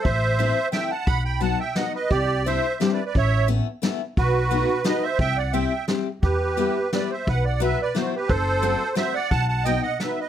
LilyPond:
<<
  \new Staff \with { instrumentName = "Accordion" } { \time 3/4 \key b \phrygian \tempo 4 = 175 <c'' e''>2 <e'' g''>8 <fis'' a''>8 | <fis'' b''>8 <g'' b''>8 <fis'' a''>8 <e'' g''>8 <dis'' fis''>8 <b' dis''>8 | <g' d''>4 <c'' e''>4 \tuplet 3/2 { <g' c''>8 <b' d''>8 <b' d''>8 } | <cis'' e''>4 r2 |
<fis' b'>2 <b' dis''>8 <c'' e''>8 | <e'' g''>8 <d'' fis''>8 <e'' g''>4 r4 | <g' b'>2 <b' d''>8 <c'' e''>8 | <b' fis''>8 <d'' fis''>8 <b' e''>8 <b' d''>8 <fis' c''>8 <g' b'>8 |
<a' c''>2 <c'' e''>8 <d'' fis''>8 | <fis'' a''>8 <fis'' a''>8 <dis'' g''>8 <dis'' fis''>8 <b' e''>8 <b' dis''>8 | }
  \new Staff \with { instrumentName = "Steel-string acoustic guitar" } { \time 3/4 \key b \phrygian r4 <e a c' e'>8 r8 <e a c' e'>8 r8 | r4 <fis b dis' fis'>8 r8 <fis b dis' fis'>8 r8 | r4 <g c' d' e'>8 r8 <g c' d' e'>8 r8 | r4 <a b cis' e'>8 r8 <a b cis' e'>8 r8 |
r4 <a b dis' fis'>8 r8 <a b dis' fis'>8 r8 | r4 <g c' e' g'>8 r8 <g c' e' g'>8 r8 | r4 <g b e' g'>8 r8 <g b e' g'>8 r8 | r4 <fis b e' fis'>8 r8 <fis b e' fis'>8 r8 |
r4 <fis a c' fis'>8 r8 <fis a c' fis'>8 r8 | r4 <fis b dis' fis'>8 r8 <fis b dis' fis'>8 r8 | }
  \new Staff \with { instrumentName = "Upright bass" } { \clef bass \time 3/4 \key b \phrygian a,,2 r4 | b,,2 r4 | c,2 r4 | a,,2 r4 |
b,,2 r4 | c,2 r4 | e,2 r4 | b,,2 r4 |
fis,,2 r4 | b,,2 r4 | }
  \new DrumStaff \with { instrumentName = "Drums" } \drummode { \time 3/4 <hh bd>4 hh4 <hh sn>4 | <hh bd>4 hh4 <hh sn>4 | <hh bd>4 hh4 <hh sn>4 | <hh bd>4 hh4 <hh sn>4 |
<hh bd>4 hh4 <hh sn>4 | <hh bd>4 hh4 <hh sn>4 | <hh bd>4 hh4 <hh sn>4 | <hh bd>4 hh4 <hh sn>4 |
<hh bd>4 hh4 <hh sn>4 | <hh bd>4 hh4 <hh sn>4 | }
>>